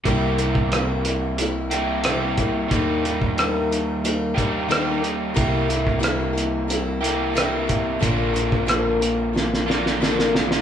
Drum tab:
HH |x-x-x-x-x-x-x-x-|x-x-x-x-x-x-x-x-|x-x-x-x-x-x-x-x-|x-x-x-x---------|
SD |----r-------r---|----r-------r---|----r-------r---|----r---oooooooo|
BD |o--o----------o-|o--o------o-----|o--o----------o-|o--o------------|